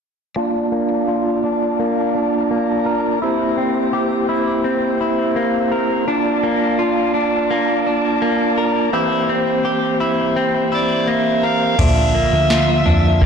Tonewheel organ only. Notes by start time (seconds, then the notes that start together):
0.36 A#3 D4 F4 D5 A5
3.23 C4 E4 G4 C5
6.07 D4 F4 D5 A5
8.93 E3 A#3 C4 G4 C5
11.80 D3 F3 A#3 F4